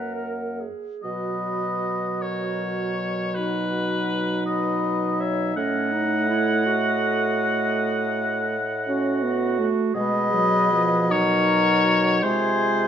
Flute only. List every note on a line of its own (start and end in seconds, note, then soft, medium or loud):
0.00 0.61 F#5 medium
1.04 2.23 B4 medium
2.22 3.36 A#4 medium
3.35 4.45 F#4 medium
4.46 5.21 B4 medium
5.20 5.55 C#5 medium
5.56 9.66 D#5 medium
9.96 11.11 B4 medium
11.10 12.22 A#4 medium
12.23 12.88 G#4 medium